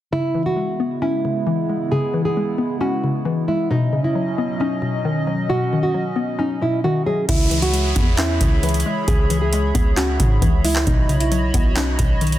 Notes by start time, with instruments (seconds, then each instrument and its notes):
0.12 synth pluck C#3, analog synth pad C#3 G#3 B3 E4, nylon-string guitar E4
0.35 synth pluck E3
0.46 nylon-string guitar F#4
0.56 synth pluck G#3
0.80 synth pluck B3
1.02 synth pluck C#4, nylon-string guitar E4
1.25 synth pluck C#3
1.47 synth pluck E3
1.70 synth pluck G#3
1.92 synth pluck C#3, nylon-string guitar G#4
2.14 synth pluck E3
2.25 nylon-string guitar G#4
2.37 synth pluck G#3
2.58 synth pluck B3
2.81 synth pluck C#4, nylon-string guitar F#4
3.04 synth pluck C#3
3.25 synth pluck E3
3.48 synth pluck G#3, nylon-string guitar E4
3.71 analog synth pad B2 F#3 C#4 D#5, synth pluck B2, nylon-string guitar D#4
3.93 synth pluck C#3
4.04 nylon-string guitar E4
4.15 synth pluck F#3
4.38 synth pluck B3
4.60 synth pluck C#4, nylon-string guitar D#4
4.82 synth pluck B2
5.05 synth pluck D#3
5.27 synth pluck F#3
5.50 synth pluck B2, nylon-string guitar F#4
5.73 synth pluck D#3
5.83 nylon-string guitar F#4
5.94 synth pluck F#3
6.16 synth pluck B3
6.39 synth pluck C#4, nylon-string guitar D#4
6.62 synth pluck B2, nylon-string guitar E4
6.84 synth pluck D#3, nylon-string guitar F#4
7.06 synth pluck F#3, nylon-string guitar G#4
7.29 808-style bass C#2, synth pluck C#3, nylon-string guitar E4, analog synth pad G#4 C#5 E5 B5, kick, closed hi-hat, crash, downlifter
7.51 synth pluck E3, closed hi-hat
7.62 nylon-string guitar F#4, closed hi-hat
7.73 synth pluck G#3, closed hi-hat
7.96 808-style bass E2, synth pluck B3, kick, closed hi-hat
8.18 synth pluck C#4, nylon-string guitar E4, clap, closed hi-hat
8.41 808-style bass C#2, synth pluck C#3, kick, closed hi-hat
8.63 synth pluck E3, closed hi-hat
8.69 closed hi-hat
8.74 closed hi-hat
8.80 closed hi-hat
8.86 synth pluck G#3
9.08 808-style bass C#2, synth pluck C#3, nylon-string guitar G#4, kick, closed hi-hat
9.30 synth pluck E3, closed hi-hat
9.42 nylon-string guitar G#4
9.53 synth pluck G#3, closed hi-hat
9.75 808-style bass C#2, synth pluck B3, kick, closed hi-hat
9.97 synth pluck C#4, nylon-string guitar F#4, clap, closed hi-hat
10.20 808-style bass G#2, synth pluck C#3, kick, closed hi-hat
10.42 808-style bass C#2, synth pluck E3, kick, closed hi-hat
10.64 synth pluck G#3, nylon-string guitar E4, open hi-hat
10.76 clap
10.87 808-style bass B1, synth pluck B2, nylon-string guitar D#4, analog synth pad F#4 C#5 D#5 B5, kick, closed hi-hat
11.09 synth pluck C#3, closed hi-hat
11.20 nylon-string guitar E4, closed hi-hat
11.32 synth pluck F#3, closed hi-hat
11.54 808-style bass B1, synth pluck B3, kick, closed hi-hat
11.76 synth pluck C#4, nylon-string guitar D#4, clap, closed hi-hat
11.98 808-style bass B1, synth pluck B2, kick, closed hi-hat
12.21 synth pluck D#3, closed hi-hat
12.27 closed hi-hat
12.32 closed hi-hat